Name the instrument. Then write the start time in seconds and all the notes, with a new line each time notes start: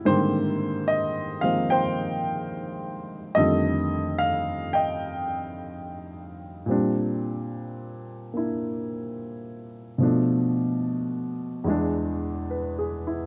upright piano
Already playing: E4
0.05 G#2 D3 D#3 G3 A#3 C4 G4 C5
0.88 D#5
1.41 D#3 F3 G#3 A#3 C4 F5
1.70 C5 G5
3.35 F2 D3 D#3 G3 A3 A4 D#5
4.18 F5
4.73 D#5 G5
6.66 A#2 G3 C4
6.71 D4
8.34 A#3 D4 E4
9.98 B2 F3 A3
10.03 D4
11.64 E2 E3 G#3
11.70 D4
12.51 B4
12.79 G#4
13.07 E4